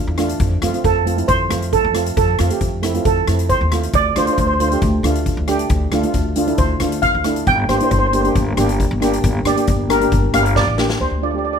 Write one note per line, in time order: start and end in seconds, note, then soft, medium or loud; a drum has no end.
0.07 0.35 E2 medium
0.18 0.40 A3 medium
0.18 0.40 D4 medium
0.18 0.40 F4 medium
0.18 cross-stick medium
0.18 closed hi-hat medium
0.29 closed hi-hat medium
0.40 0.58 F2 loud
0.40 kick loud
0.40 closed hi-hat medium
0.62 0.72 F2 medium
0.62 0.69 A3 medium
0.62 0.69 C4 medium
0.62 0.69 F4 medium
0.62 cross-stick medium
0.62 closed hi-hat medium
0.73 0.93 A3 medium
0.73 0.93 C4 medium
0.73 0.94 F4 medium
0.73 closed hi-hat medium
0.84 1.21 F2 medium
0.84 1.30 A4 medium
0.84 kick medium
0.84 closed hi-hat medium
1.06 1.13 A3 medium
1.06 1.13 C4 medium
1.06 1.14 F4 medium
1.06 closed hi-hat medium
1.17 1.37 A3 medium
1.17 1.37 C4 medium
1.17 1.38 E4 medium
1.17 closed hi-hat medium
1.28 1.47 F2 medium
1.28 1.74 C5 loud
1.28 kick loud
1.28 closed hi-hat medium
1.49 1.79 F2 medium
1.49 1.77 A3 medium
1.49 1.77 C4 medium
1.49 1.77 F4 medium
1.49 cross-stick medium
1.49 closed hi-hat medium
1.62 closed hi-hat medium
1.73 2.16 A4 medium
1.73 kick medium
1.73 closed hi-hat medium
1.84 2.11 F2 loud
1.93 2.21 A3 medium
1.93 2.21 C4 medium
1.93 2.22 F4 medium
1.93 cross-stick medium
1.93 closed hi-hat medium
2.06 closed hi-hat medium
2.17 2.35 F2 loud
2.17 2.58 A4 medium
2.17 kick loud
2.17 closed hi-hat medium
2.39 2.49 F2 medium
2.39 2.46 A3 medium
2.39 2.46 C4 medium
2.39 2.46 F4 medium
2.39 cross-stick medium
2.39 closed hi-hat medium
2.50 2.70 A3 medium
2.50 2.70 C4 medium
2.50 2.71 G4 medium
2.50 closed hi-hat medium
2.61 2.98 F2 medium
2.61 kick medium
2.61 closed hi-hat medium
2.82 2.90 A3 medium
2.82 2.90 C4 medium
2.82 2.90 E4 loud
2.82 cross-stick medium
2.82 closed hi-hat medium
2.94 3.14 A3 medium
2.94 3.15 C4 medium
2.94 3.15 F4 medium
2.94 closed hi-hat medium
3.05 3.24 F2 medium
3.05 3.51 A4 medium
3.05 kick loud
3.05 closed hi-hat medium
3.27 3.55 F2 medium
3.27 3.54 A3 medium
3.27 3.54 C4 medium
3.27 3.55 E4 medium
3.27 cross-stick medium
3.27 closed hi-hat medium
3.39 closed hi-hat medium
3.49 3.95 C5 medium
3.49 kick medium
3.49 closed hi-hat medium
3.61 3.88 D#2 medium
3.72 3.94 A3 medium
3.72 3.94 C4 medium
3.72 3.94 F4 medium
3.72 cross-stick medium
3.72 closed hi-hat medium
3.83 closed hi-hat medium
3.93 4.12 D2 loud
3.93 4.17 D5 loud
3.93 kick loud
3.93 closed hi-hat medium
4.16 4.26 D2 medium
4.16 4.23 A3 medium
4.16 4.23 D4 medium
4.16 4.23 F4 medium
4.16 4.24 C5 medium
4.16 cross-stick medium
4.16 closed hi-hat medium
4.26 4.47 A3 medium
4.26 4.48 D4 medium
4.26 4.48 F4 medium
4.26 4.32 C5 medium
4.26 closed hi-hat medium
4.33 4.39 C5 medium
4.38 4.74 D2 loud
4.38 4.46 C5 medium
4.38 kick medium
4.38 closed hi-hat medium
4.47 4.52 C5 medium
4.54 4.59 C5 medium
4.60 4.67 A3 medium
4.60 4.67 D4 medium
4.60 4.67 F4 medium
4.60 4.67 C5 medium
4.60 closed hi-hat medium
4.68 4.91 A3 medium
4.68 4.92 D4 medium
4.68 4.92 G4 medium
4.68 4.75 C5 medium
4.68 closed hi-hat medium
4.82 5.00 D2 loud
4.82 kick loud
4.82 closed hi-hat medium
5.03 5.31 D2 medium
5.03 5.31 A3 medium
5.03 5.31 D4 medium
5.03 5.31 F4 loud
5.03 cross-stick medium
5.03 closed hi-hat medium
5.15 closed hi-hat medium
5.26 kick medium
5.26 closed hi-hat medium
5.37 5.64 D2 loud
5.48 5.75 A3 medium
5.48 5.75 D4 medium
5.48 5.75 G4 loud
5.48 cross-stick medium
5.48 closed hi-hat medium
5.59 closed hi-hat medium
5.69 5.88 D2 loud
5.69 kick loud
5.69 closed hi-hat medium
5.92 6.02 D2 medium
5.92 5.99 A3 medium
5.92 5.99 D4 medium
5.92 6.00 F4 loud
5.92 cross-stick medium
5.92 closed hi-hat medium
6.03 6.23 A3 medium
6.03 6.24 D4 medium
6.03 6.24 F4 medium
6.03 closed hi-hat medium
6.14 6.51 D2 medium
6.14 kick medium
6.14 closed hi-hat medium
6.36 6.43 A3 medium
6.36 6.43 D4 medium
6.36 6.44 F4 loud
6.36 closed hi-hat medium
6.47 6.67 A3 medium
6.47 6.68 D4 medium
6.47 6.68 E4 medium
6.47 closed hi-hat medium
6.58 6.77 D2 loud
6.58 6.99 C5 medium
6.58 kick loud
6.58 closed hi-hat medium
6.80 7.08 D2 loud
6.80 7.07 A3 medium
6.80 7.08 D4 medium
6.80 7.08 F4 medium
6.80 cross-stick medium
6.80 closed hi-hat medium
6.92 closed hi-hat medium
7.02 7.48 F5 loud
7.02 kick medium
7.02 closed hi-hat medium
7.15 7.41 D2 medium
7.24 7.47 A3 medium
7.24 7.47 D4 medium
7.24 7.47 E4 medium
7.24 cross-stick medium
7.24 closed hi-hat medium
7.36 closed hi-hat medium
7.47 7.65 G1 loud
7.47 7.70 G5 loud
7.47 kick loud
7.47 closed hi-hat medium
7.69 7.78 G1 medium
7.69 7.76 A#3 medium
7.69 7.76 D4 medium
7.69 7.76 G4 medium
7.69 7.76 C5 medium
7.69 cross-stick medium
7.69 closed hi-hat medium
7.77 8.00 A#3 medium
7.77 8.00 D4 medium
7.77 7.83 C5 medium
7.77 closed hi-hat medium
7.82 8.01 E4 medium
7.82 7.90 C5 medium
7.91 8.28 G1 loud
7.91 7.98 C5 medium
7.91 kick medium
7.91 closed hi-hat medium
7.99 8.06 C5 medium
8.07 8.12 C5 medium
8.13 8.20 A#3 medium
8.13 8.20 D4 medium
8.13 8.20 G4 medium
8.13 8.21 C5 medium
8.13 closed hi-hat medium
8.22 8.44 A#3 medium
8.22 8.44 D4 medium
8.22 8.45 G4 medium
8.22 8.28 C5 medium
8.22 closed hi-hat medium
8.35 8.54 G1 loud
8.35 kick loud
8.35 closed hi-hat medium
8.57 8.85 G1 loud
8.57 8.84 A#3 medium
8.57 8.84 D4 medium
8.57 8.84 G4 loud
8.57 cross-stick medium
8.57 closed hi-hat medium
8.69 closed hi-hat medium
8.80 kick medium
8.80 closed hi-hat medium
8.91 9.18 G1 loud
9.01 9.28 A#3 loud
9.01 9.28 D4 medium
9.01 9.28 G4 loud
9.01 cross-stick medium
9.01 closed hi-hat medium
9.13 closed hi-hat medium
9.24 9.42 G1 loud
9.24 kick loud
9.24 closed hi-hat medium
9.45 9.55 G1 medium
9.45 9.52 A#3 medium
9.45 9.52 D4 medium
9.45 9.53 G4 medium
9.45 9.92 D5 medium
9.45 cross-stick medium
9.45 closed hi-hat medium
9.56 9.76 A#3 medium
9.56 9.77 D4 medium
9.56 9.77 G4 medium
9.56 closed hi-hat medium
9.67 10.04 G1 loud
9.67 kick loud
9.67 closed hi-hat medium
9.89 9.96 A#3 medium
9.89 9.96 D4 medium
9.89 9.97 G4 medium
9.89 10.35 A#4 medium
9.89 cross-stick medium
9.89 closed hi-hat medium
10.00 10.21 A#3 medium
10.00 10.21 D4 medium
10.00 10.21 G4 medium
10.00 closed hi-hat medium
10.12 10.30 G1 loud
10.12 kick loud
10.12 closed hi-hat medium
10.33 10.62 G1 medium
10.33 10.60 A#3 medium
10.33 10.60 D4 medium
10.33 10.61 G4 medium
10.33 10.57 F5 medium
10.33 cross-stick loud
10.33 closed hi-hat medium
10.46 closed hi-hat medium
10.56 10.97 D5 medium
10.56 kick medium
10.56 snare medium
10.67 10.94 A1 medium
10.77 11.00 A#3 medium
10.77 11.00 D4 medium
10.77 11.00 G4 medium
10.77 snare medium
10.90 snare medium
11.00 11.10 D2 medium
11.00 11.23 C5 medium
11.11 11.57 D2 medium
11.22 11.29 A3 medium
11.22 11.29 D4 medium
11.22 11.30 F4 medium
11.22 11.30 D5 medium
11.31 11.53 A3 medium
11.31 11.54 D4 medium
11.31 11.54 G4 medium
11.31 11.37 D5 soft
11.38 11.44 D5 medium
11.45 11.52 D5 medium
11.53 11.59 D5 medium